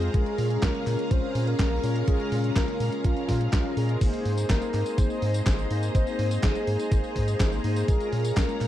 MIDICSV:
0, 0, Header, 1, 6, 480
1, 0, Start_track
1, 0, Key_signature, -5, "minor"
1, 0, Tempo, 483871
1, 141, Time_signature, 4, 2, 24, 8
1, 8607, End_track
2, 0, Start_track
2, 0, Title_t, "String machine"
2, 0, Program_c, 0, 50
2, 0, Note_on_c, 0, 68, 81
2, 0, Note_on_c, 0, 72, 70
2, 0, Note_on_c, 0, 77, 71
2, 0, Note_on_c, 0, 82, 88
2, 101, Note_off_c, 0, 77, 0
2, 102, Note_off_c, 0, 72, 0
2, 122, Note_off_c, 0, 82, 0
2, 140, Note_on_c, 0, 61, 73
2, 140, Note_on_c, 0, 77, 74
2, 140, Note_on_c, 0, 82, 91
2, 3941, Note_off_c, 0, 68, 0
2, 3942, Note_off_c, 0, 61, 0
2, 3942, Note_off_c, 0, 77, 0
2, 3942, Note_off_c, 0, 82, 0
2, 3980, Note_on_c, 0, 68, 86
2, 3980, Note_on_c, 0, 72, 76
2, 3980, Note_on_c, 0, 75, 79
2, 3980, Note_on_c, 0, 82, 93
2, 7782, Note_off_c, 0, 72, 0
2, 7782, Note_off_c, 0, 75, 0
2, 7821, Note_on_c, 0, 73, 74
2, 7821, Note_on_c, 0, 77, 76
2, 8607, Note_off_c, 0, 68, 0
2, 8607, Note_off_c, 0, 73, 0
2, 8607, Note_off_c, 0, 77, 0
2, 8607, Note_off_c, 0, 82, 0
2, 8607, End_track
3, 0, Start_track
3, 0, Title_t, "Soft synth lead"
3, 0, Program_c, 1, 80
3, 0, Note_on_c, 1, 68, 121
3, 621, Note_on_c, 1, 70, 105
3, 636, Note_off_c, 1, 68, 0
3, 1102, Note_on_c, 1, 72, 106
3, 1116, Note_off_c, 1, 70, 0
3, 1462, Note_on_c, 1, 70, 113
3, 1477, Note_off_c, 1, 72, 0
3, 2056, Note_off_c, 1, 70, 0
3, 2062, Note_on_c, 1, 68, 109
3, 2508, Note_off_c, 1, 68, 0
3, 2541, Note_on_c, 1, 70, 109
3, 3022, Note_on_c, 1, 65, 97
3, 3037, Note_off_c, 1, 70, 0
3, 3735, Note_off_c, 1, 65, 0
3, 3741, Note_on_c, 1, 68, 110
3, 4421, Note_off_c, 1, 68, 0
3, 4459, Note_on_c, 1, 70, 106
3, 4939, Note_on_c, 1, 72, 96
3, 4954, Note_off_c, 1, 70, 0
3, 5660, Note_off_c, 1, 72, 0
3, 5898, Note_on_c, 1, 72, 102
3, 6379, Note_on_c, 1, 68, 99
3, 6394, Note_off_c, 1, 72, 0
3, 7574, Note_off_c, 1, 68, 0
3, 7580, Note_on_c, 1, 68, 105
3, 8301, Note_on_c, 1, 70, 109
3, 8316, Note_off_c, 1, 68, 0
3, 8607, Note_off_c, 1, 70, 0
3, 8607, End_track
4, 0, Start_track
4, 0, Title_t, "Analog polysynth"
4, 0, Program_c, 2, 90
4, 0, Note_on_c, 2, 56, 93
4, 0, Note_on_c, 2, 60, 85
4, 0, Note_on_c, 2, 65, 88
4, 0, Note_on_c, 2, 72, 104
4, 112, Note_off_c, 2, 56, 0
4, 112, Note_off_c, 2, 60, 0
4, 112, Note_off_c, 2, 65, 0
4, 112, Note_off_c, 2, 72, 0
4, 140, Note_on_c, 2, 56, 83
4, 140, Note_on_c, 2, 61, 78
4, 141, Note_on_c, 2, 65, 78
4, 141, Note_on_c, 2, 70, 93
4, 1792, Note_off_c, 2, 56, 0
4, 1792, Note_off_c, 2, 61, 0
4, 1792, Note_off_c, 2, 65, 0
4, 1792, Note_off_c, 2, 70, 0
4, 1821, Note_on_c, 2, 56, 92
4, 1821, Note_on_c, 2, 61, 88
4, 1821, Note_on_c, 2, 65, 83
4, 1821, Note_on_c, 2, 70, 104
4, 2032, Note_off_c, 2, 56, 0
4, 2032, Note_off_c, 2, 61, 0
4, 2032, Note_off_c, 2, 65, 0
4, 2032, Note_off_c, 2, 70, 0
4, 2060, Note_on_c, 2, 56, 88
4, 2060, Note_on_c, 2, 61, 80
4, 2060, Note_on_c, 2, 65, 79
4, 2060, Note_on_c, 2, 70, 96
4, 3711, Note_off_c, 2, 56, 0
4, 3711, Note_off_c, 2, 65, 0
4, 3712, Note_off_c, 2, 61, 0
4, 3712, Note_off_c, 2, 70, 0
4, 3740, Note_on_c, 2, 56, 96
4, 3740, Note_on_c, 2, 61, 84
4, 3740, Note_on_c, 2, 65, 86
4, 3740, Note_on_c, 2, 70, 104
4, 3951, Note_off_c, 2, 56, 0
4, 3951, Note_off_c, 2, 61, 0
4, 3951, Note_off_c, 2, 65, 0
4, 3951, Note_off_c, 2, 70, 0
4, 3979, Note_on_c, 2, 58, 82
4, 3979, Note_on_c, 2, 63, 79
4, 3979, Note_on_c, 2, 72, 97
4, 3980, Note_on_c, 2, 68, 83
4, 5631, Note_off_c, 2, 58, 0
4, 5631, Note_off_c, 2, 63, 0
4, 5631, Note_off_c, 2, 68, 0
4, 5631, Note_off_c, 2, 72, 0
4, 5660, Note_on_c, 2, 58, 94
4, 5660, Note_on_c, 2, 63, 91
4, 5660, Note_on_c, 2, 68, 84
4, 5660, Note_on_c, 2, 72, 103
4, 5871, Note_off_c, 2, 58, 0
4, 5871, Note_off_c, 2, 68, 0
4, 5871, Note_off_c, 2, 72, 0
4, 5872, Note_off_c, 2, 63, 0
4, 5899, Note_on_c, 2, 58, 81
4, 5899, Note_on_c, 2, 68, 80
4, 5900, Note_on_c, 2, 63, 79
4, 5900, Note_on_c, 2, 72, 99
4, 7551, Note_off_c, 2, 58, 0
4, 7551, Note_off_c, 2, 63, 0
4, 7551, Note_off_c, 2, 68, 0
4, 7551, Note_off_c, 2, 72, 0
4, 7580, Note_on_c, 2, 58, 91
4, 7580, Note_on_c, 2, 63, 87
4, 7580, Note_on_c, 2, 68, 82
4, 7580, Note_on_c, 2, 72, 108
4, 7791, Note_off_c, 2, 63, 0
4, 7792, Note_off_c, 2, 58, 0
4, 7792, Note_off_c, 2, 68, 0
4, 7792, Note_off_c, 2, 72, 0
4, 7820, Note_on_c, 2, 56, 87
4, 7820, Note_on_c, 2, 61, 80
4, 7820, Note_on_c, 2, 65, 79
4, 7820, Note_on_c, 2, 70, 97
4, 8607, Note_off_c, 2, 56, 0
4, 8607, Note_off_c, 2, 61, 0
4, 8607, Note_off_c, 2, 65, 0
4, 8607, Note_off_c, 2, 70, 0
4, 8607, End_track
5, 0, Start_track
5, 0, Title_t, "Analog synth bass"
5, 0, Program_c, 3, 38
5, 140, Note_on_c, 3, 34, 96
5, 237, Note_off_c, 3, 34, 0
5, 381, Note_on_c, 3, 46, 84
5, 574, Note_off_c, 3, 46, 0
5, 620, Note_on_c, 3, 34, 99
5, 717, Note_off_c, 3, 34, 0
5, 860, Note_on_c, 3, 46, 85
5, 957, Note_off_c, 3, 46, 0
5, 1100, Note_on_c, 3, 34, 98
5, 1197, Note_off_c, 3, 34, 0
5, 1340, Note_on_c, 3, 46, 95
5, 1534, Note_off_c, 3, 46, 0
5, 1581, Note_on_c, 3, 34, 105
5, 1774, Note_off_c, 3, 34, 0
5, 1821, Note_on_c, 3, 46, 83
5, 2014, Note_off_c, 3, 46, 0
5, 2060, Note_on_c, 3, 34, 101
5, 2157, Note_off_c, 3, 34, 0
5, 2301, Note_on_c, 3, 46, 81
5, 2494, Note_off_c, 3, 46, 0
5, 2540, Note_on_c, 3, 34, 99
5, 2637, Note_off_c, 3, 34, 0
5, 2780, Note_on_c, 3, 46, 86
5, 2877, Note_off_c, 3, 46, 0
5, 3020, Note_on_c, 3, 34, 99
5, 3117, Note_off_c, 3, 34, 0
5, 3260, Note_on_c, 3, 46, 100
5, 3454, Note_off_c, 3, 46, 0
5, 3500, Note_on_c, 3, 34, 91
5, 3597, Note_off_c, 3, 34, 0
5, 3739, Note_on_c, 3, 46, 107
5, 3934, Note_off_c, 3, 46, 0
5, 3980, Note_on_c, 3, 32, 103
5, 4077, Note_off_c, 3, 32, 0
5, 4220, Note_on_c, 3, 44, 84
5, 4414, Note_off_c, 3, 44, 0
5, 4460, Note_on_c, 3, 32, 101
5, 4557, Note_off_c, 3, 32, 0
5, 4700, Note_on_c, 3, 44, 88
5, 4797, Note_off_c, 3, 44, 0
5, 4940, Note_on_c, 3, 32, 101
5, 5037, Note_off_c, 3, 32, 0
5, 5181, Note_on_c, 3, 44, 100
5, 5374, Note_off_c, 3, 44, 0
5, 5420, Note_on_c, 3, 32, 106
5, 5614, Note_off_c, 3, 32, 0
5, 5660, Note_on_c, 3, 44, 78
5, 5854, Note_off_c, 3, 44, 0
5, 5899, Note_on_c, 3, 32, 98
5, 5997, Note_off_c, 3, 32, 0
5, 6140, Note_on_c, 3, 44, 86
5, 6334, Note_off_c, 3, 44, 0
5, 6380, Note_on_c, 3, 32, 100
5, 6477, Note_off_c, 3, 32, 0
5, 6621, Note_on_c, 3, 44, 83
5, 6717, Note_off_c, 3, 44, 0
5, 6860, Note_on_c, 3, 32, 100
5, 6957, Note_off_c, 3, 32, 0
5, 7100, Note_on_c, 3, 44, 95
5, 7294, Note_off_c, 3, 44, 0
5, 7340, Note_on_c, 3, 32, 99
5, 7534, Note_off_c, 3, 32, 0
5, 7581, Note_on_c, 3, 44, 85
5, 7774, Note_off_c, 3, 44, 0
5, 7820, Note_on_c, 3, 34, 94
5, 7917, Note_off_c, 3, 34, 0
5, 8061, Note_on_c, 3, 46, 81
5, 8254, Note_off_c, 3, 46, 0
5, 8301, Note_on_c, 3, 34, 95
5, 8397, Note_off_c, 3, 34, 0
5, 8541, Note_on_c, 3, 46, 85
5, 8607, Note_off_c, 3, 46, 0
5, 8607, End_track
6, 0, Start_track
6, 0, Title_t, "Drums"
6, 21, Note_on_c, 9, 42, 53
6, 120, Note_off_c, 9, 42, 0
6, 140, Note_on_c, 9, 36, 114
6, 141, Note_on_c, 9, 42, 76
6, 239, Note_off_c, 9, 36, 0
6, 240, Note_off_c, 9, 42, 0
6, 261, Note_on_c, 9, 42, 40
6, 360, Note_off_c, 9, 42, 0
6, 380, Note_on_c, 9, 46, 112
6, 479, Note_off_c, 9, 46, 0
6, 500, Note_on_c, 9, 42, 56
6, 599, Note_off_c, 9, 42, 0
6, 620, Note_on_c, 9, 36, 110
6, 620, Note_on_c, 9, 38, 112
6, 620, Note_on_c, 9, 39, 87
6, 620, Note_on_c, 9, 42, 80
6, 719, Note_off_c, 9, 36, 0
6, 720, Note_off_c, 9, 38, 0
6, 720, Note_off_c, 9, 39, 0
6, 720, Note_off_c, 9, 42, 0
6, 740, Note_on_c, 9, 42, 39
6, 840, Note_off_c, 9, 42, 0
6, 861, Note_on_c, 9, 39, 50
6, 861, Note_on_c, 9, 46, 112
6, 960, Note_off_c, 9, 39, 0
6, 960, Note_off_c, 9, 46, 0
6, 981, Note_on_c, 9, 42, 55
6, 1080, Note_off_c, 9, 42, 0
6, 1100, Note_on_c, 9, 36, 114
6, 1101, Note_on_c, 9, 42, 90
6, 1200, Note_off_c, 9, 36, 0
6, 1200, Note_off_c, 9, 42, 0
6, 1341, Note_on_c, 9, 46, 121
6, 1440, Note_off_c, 9, 46, 0
6, 1461, Note_on_c, 9, 42, 55
6, 1561, Note_off_c, 9, 42, 0
6, 1580, Note_on_c, 9, 36, 119
6, 1581, Note_on_c, 9, 38, 109
6, 1581, Note_on_c, 9, 39, 91
6, 1581, Note_on_c, 9, 42, 82
6, 1680, Note_off_c, 9, 36, 0
6, 1680, Note_off_c, 9, 38, 0
6, 1680, Note_off_c, 9, 39, 0
6, 1680, Note_off_c, 9, 42, 0
6, 1821, Note_on_c, 9, 46, 115
6, 1920, Note_off_c, 9, 46, 0
6, 1941, Note_on_c, 9, 42, 55
6, 2040, Note_off_c, 9, 42, 0
6, 2060, Note_on_c, 9, 36, 123
6, 2061, Note_on_c, 9, 42, 80
6, 2159, Note_off_c, 9, 36, 0
6, 2160, Note_off_c, 9, 42, 0
6, 2181, Note_on_c, 9, 42, 38
6, 2280, Note_off_c, 9, 42, 0
6, 2301, Note_on_c, 9, 46, 111
6, 2400, Note_off_c, 9, 46, 0
6, 2421, Note_on_c, 9, 42, 57
6, 2520, Note_off_c, 9, 42, 0
6, 2540, Note_on_c, 9, 36, 118
6, 2541, Note_on_c, 9, 38, 116
6, 2541, Note_on_c, 9, 39, 91
6, 2541, Note_on_c, 9, 42, 80
6, 2639, Note_off_c, 9, 36, 0
6, 2640, Note_off_c, 9, 38, 0
6, 2640, Note_off_c, 9, 39, 0
6, 2640, Note_off_c, 9, 42, 0
6, 2661, Note_on_c, 9, 42, 40
6, 2760, Note_off_c, 9, 42, 0
6, 2780, Note_on_c, 9, 46, 114
6, 2880, Note_off_c, 9, 46, 0
6, 2901, Note_on_c, 9, 42, 57
6, 3000, Note_off_c, 9, 42, 0
6, 3020, Note_on_c, 9, 36, 106
6, 3020, Note_on_c, 9, 42, 92
6, 3119, Note_off_c, 9, 36, 0
6, 3119, Note_off_c, 9, 42, 0
6, 3140, Note_on_c, 9, 42, 38
6, 3239, Note_off_c, 9, 42, 0
6, 3260, Note_on_c, 9, 36, 59
6, 3260, Note_on_c, 9, 38, 62
6, 3260, Note_on_c, 9, 46, 116
6, 3359, Note_off_c, 9, 36, 0
6, 3359, Note_off_c, 9, 38, 0
6, 3359, Note_off_c, 9, 46, 0
6, 3380, Note_on_c, 9, 42, 56
6, 3480, Note_off_c, 9, 42, 0
6, 3500, Note_on_c, 9, 36, 122
6, 3500, Note_on_c, 9, 38, 111
6, 3500, Note_on_c, 9, 39, 91
6, 3500, Note_on_c, 9, 42, 83
6, 3599, Note_off_c, 9, 36, 0
6, 3599, Note_off_c, 9, 38, 0
6, 3599, Note_off_c, 9, 39, 0
6, 3599, Note_off_c, 9, 42, 0
6, 3740, Note_on_c, 9, 46, 108
6, 3839, Note_off_c, 9, 46, 0
6, 3860, Note_on_c, 9, 42, 56
6, 3959, Note_off_c, 9, 42, 0
6, 3980, Note_on_c, 9, 36, 117
6, 3980, Note_on_c, 9, 42, 81
6, 3980, Note_on_c, 9, 49, 75
6, 3980, Note_on_c, 9, 54, 46
6, 4079, Note_off_c, 9, 36, 0
6, 4080, Note_off_c, 9, 42, 0
6, 4080, Note_off_c, 9, 49, 0
6, 4080, Note_off_c, 9, 54, 0
6, 4100, Note_on_c, 9, 42, 38
6, 4100, Note_on_c, 9, 54, 30
6, 4200, Note_off_c, 9, 42, 0
6, 4200, Note_off_c, 9, 54, 0
6, 4220, Note_on_c, 9, 46, 107
6, 4319, Note_off_c, 9, 46, 0
6, 4340, Note_on_c, 9, 42, 56
6, 4340, Note_on_c, 9, 54, 57
6, 4439, Note_off_c, 9, 42, 0
6, 4439, Note_off_c, 9, 54, 0
6, 4460, Note_on_c, 9, 36, 117
6, 4460, Note_on_c, 9, 38, 120
6, 4460, Note_on_c, 9, 39, 88
6, 4460, Note_on_c, 9, 42, 79
6, 4460, Note_on_c, 9, 54, 46
6, 4559, Note_off_c, 9, 36, 0
6, 4559, Note_off_c, 9, 38, 0
6, 4559, Note_off_c, 9, 39, 0
6, 4559, Note_off_c, 9, 42, 0
6, 4559, Note_off_c, 9, 54, 0
6, 4580, Note_on_c, 9, 42, 41
6, 4580, Note_on_c, 9, 54, 29
6, 4679, Note_off_c, 9, 42, 0
6, 4679, Note_off_c, 9, 54, 0
6, 4700, Note_on_c, 9, 39, 56
6, 4700, Note_on_c, 9, 46, 103
6, 4799, Note_off_c, 9, 39, 0
6, 4799, Note_off_c, 9, 46, 0
6, 4820, Note_on_c, 9, 42, 55
6, 4820, Note_on_c, 9, 54, 58
6, 4919, Note_off_c, 9, 42, 0
6, 4919, Note_off_c, 9, 54, 0
6, 4940, Note_on_c, 9, 36, 116
6, 4940, Note_on_c, 9, 42, 87
6, 4940, Note_on_c, 9, 54, 52
6, 5039, Note_off_c, 9, 36, 0
6, 5039, Note_off_c, 9, 42, 0
6, 5039, Note_off_c, 9, 54, 0
6, 5060, Note_on_c, 9, 54, 28
6, 5159, Note_off_c, 9, 54, 0
6, 5180, Note_on_c, 9, 46, 107
6, 5279, Note_off_c, 9, 46, 0
6, 5300, Note_on_c, 9, 42, 55
6, 5300, Note_on_c, 9, 54, 56
6, 5399, Note_off_c, 9, 42, 0
6, 5399, Note_off_c, 9, 54, 0
6, 5420, Note_on_c, 9, 36, 127
6, 5420, Note_on_c, 9, 38, 116
6, 5420, Note_on_c, 9, 39, 94
6, 5420, Note_on_c, 9, 42, 84
6, 5420, Note_on_c, 9, 54, 49
6, 5519, Note_off_c, 9, 36, 0
6, 5519, Note_off_c, 9, 38, 0
6, 5519, Note_off_c, 9, 39, 0
6, 5519, Note_off_c, 9, 42, 0
6, 5519, Note_off_c, 9, 54, 0
6, 5540, Note_on_c, 9, 54, 28
6, 5640, Note_off_c, 9, 54, 0
6, 5660, Note_on_c, 9, 46, 107
6, 5759, Note_off_c, 9, 46, 0
6, 5781, Note_on_c, 9, 42, 56
6, 5781, Note_on_c, 9, 54, 62
6, 5880, Note_off_c, 9, 42, 0
6, 5880, Note_off_c, 9, 54, 0
6, 5900, Note_on_c, 9, 36, 120
6, 5901, Note_on_c, 9, 42, 79
6, 5901, Note_on_c, 9, 54, 47
6, 5999, Note_off_c, 9, 36, 0
6, 6000, Note_off_c, 9, 42, 0
6, 6000, Note_off_c, 9, 54, 0
6, 6021, Note_on_c, 9, 42, 36
6, 6021, Note_on_c, 9, 54, 29
6, 6120, Note_off_c, 9, 42, 0
6, 6120, Note_off_c, 9, 54, 0
6, 6140, Note_on_c, 9, 46, 107
6, 6239, Note_off_c, 9, 46, 0
6, 6260, Note_on_c, 9, 42, 53
6, 6260, Note_on_c, 9, 54, 58
6, 6359, Note_off_c, 9, 42, 0
6, 6359, Note_off_c, 9, 54, 0
6, 6380, Note_on_c, 9, 36, 125
6, 6380, Note_on_c, 9, 38, 125
6, 6380, Note_on_c, 9, 39, 93
6, 6380, Note_on_c, 9, 42, 83
6, 6380, Note_on_c, 9, 54, 46
6, 6479, Note_off_c, 9, 36, 0
6, 6480, Note_off_c, 9, 38, 0
6, 6480, Note_off_c, 9, 39, 0
6, 6480, Note_off_c, 9, 42, 0
6, 6480, Note_off_c, 9, 54, 0
6, 6500, Note_on_c, 9, 42, 41
6, 6500, Note_on_c, 9, 54, 29
6, 6600, Note_off_c, 9, 42, 0
6, 6600, Note_off_c, 9, 54, 0
6, 6620, Note_on_c, 9, 46, 105
6, 6719, Note_off_c, 9, 46, 0
6, 6740, Note_on_c, 9, 42, 55
6, 6740, Note_on_c, 9, 54, 57
6, 6840, Note_off_c, 9, 42, 0
6, 6840, Note_off_c, 9, 54, 0
6, 6860, Note_on_c, 9, 36, 120
6, 6861, Note_on_c, 9, 42, 84
6, 6861, Note_on_c, 9, 54, 50
6, 6959, Note_off_c, 9, 36, 0
6, 6960, Note_off_c, 9, 42, 0
6, 6960, Note_off_c, 9, 54, 0
6, 6981, Note_on_c, 9, 54, 27
6, 7080, Note_off_c, 9, 54, 0
6, 7100, Note_on_c, 9, 36, 64
6, 7101, Note_on_c, 9, 46, 105
6, 7199, Note_off_c, 9, 36, 0
6, 7200, Note_off_c, 9, 46, 0
6, 7220, Note_on_c, 9, 42, 55
6, 7220, Note_on_c, 9, 54, 54
6, 7319, Note_off_c, 9, 42, 0
6, 7319, Note_off_c, 9, 54, 0
6, 7340, Note_on_c, 9, 36, 127
6, 7341, Note_on_c, 9, 38, 126
6, 7341, Note_on_c, 9, 39, 97
6, 7341, Note_on_c, 9, 42, 77
6, 7341, Note_on_c, 9, 54, 49
6, 7440, Note_off_c, 9, 36, 0
6, 7440, Note_off_c, 9, 38, 0
6, 7440, Note_off_c, 9, 39, 0
6, 7440, Note_off_c, 9, 42, 0
6, 7440, Note_off_c, 9, 54, 0
6, 7460, Note_on_c, 9, 54, 28
6, 7560, Note_off_c, 9, 54, 0
6, 7580, Note_on_c, 9, 46, 102
6, 7679, Note_off_c, 9, 46, 0
6, 7701, Note_on_c, 9, 42, 53
6, 7701, Note_on_c, 9, 54, 57
6, 7800, Note_off_c, 9, 42, 0
6, 7800, Note_off_c, 9, 54, 0
6, 7820, Note_on_c, 9, 36, 127
6, 7821, Note_on_c, 9, 42, 75
6, 7821, Note_on_c, 9, 54, 47
6, 7920, Note_off_c, 9, 36, 0
6, 7920, Note_off_c, 9, 42, 0
6, 7920, Note_off_c, 9, 54, 0
6, 7941, Note_on_c, 9, 42, 36
6, 7941, Note_on_c, 9, 54, 28
6, 8040, Note_off_c, 9, 42, 0
6, 8040, Note_off_c, 9, 54, 0
6, 8060, Note_on_c, 9, 46, 104
6, 8160, Note_off_c, 9, 46, 0
6, 8180, Note_on_c, 9, 42, 53
6, 8180, Note_on_c, 9, 54, 59
6, 8279, Note_off_c, 9, 42, 0
6, 8279, Note_off_c, 9, 54, 0
6, 8301, Note_on_c, 9, 36, 122
6, 8301, Note_on_c, 9, 38, 127
6, 8301, Note_on_c, 9, 39, 94
6, 8301, Note_on_c, 9, 42, 73
6, 8301, Note_on_c, 9, 54, 49
6, 8400, Note_off_c, 9, 36, 0
6, 8400, Note_off_c, 9, 38, 0
6, 8400, Note_off_c, 9, 39, 0
6, 8400, Note_off_c, 9, 42, 0
6, 8400, Note_off_c, 9, 54, 0
6, 8420, Note_on_c, 9, 42, 38
6, 8420, Note_on_c, 9, 54, 30
6, 8520, Note_off_c, 9, 42, 0
6, 8520, Note_off_c, 9, 54, 0
6, 8540, Note_on_c, 9, 39, 56
6, 8540, Note_on_c, 9, 46, 104
6, 8607, Note_off_c, 9, 39, 0
6, 8607, Note_off_c, 9, 46, 0
6, 8607, End_track
0, 0, End_of_file